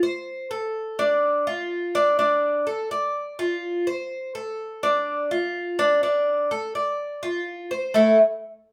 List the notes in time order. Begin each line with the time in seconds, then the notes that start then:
0.03 C5
0.51 A4
0.99 D4
1.47 F4
1.95 D4
2.19 D4
2.67 A4
2.91 D5
3.39 F4
3.87 C5
4.35 A4
4.83 D4
5.31 F4
5.79 D4
6.03 D4
6.51 A4
6.75 D5
7.23 F4
7.71 C5
7.94 A3 E4 A4